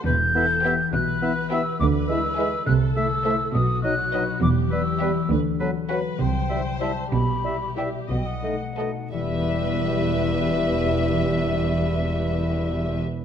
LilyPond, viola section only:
\new Staff \with { instrumentName = "Viola section" } { \time 6/8 \key e \minor \tempo 4. = 67 b'8 a'8 g'8 b'4. | b'4. a'4. | fis'4. g'4. | b'8 a'8 b'8 c''4. |
g'4. dis''8. r8. | g'2.~ | g'2. | }